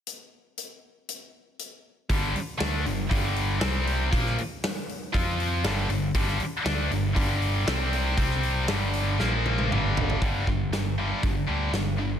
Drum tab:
HH |x---x---x---x---|o-o-o-o-o-o-o-o-|o-o-o-o-o-o-o-o-|o-o-o-o-o-o-o-o-|
SD |----------------|----o-------o---|-o--o-------o---|-o--o-------o---|
T1 |----------------|----------------|----------------|----------------|
T2 |----------------|----------------|----------------|----------------|
FT |----------------|----------------|----------------|----------------|
BD |----------------|o-------o-------|o-------o-------|o-------o-------|

HH |o-o-o-o---------|o---o---o---o---|
SD |-o--o---o-------|----o-------o---|
T1 |----------oo----|----------------|
T2 |------------o---|----------------|
FT |--------------oo|----------------|
BD |o---------------|o-o-----o-------|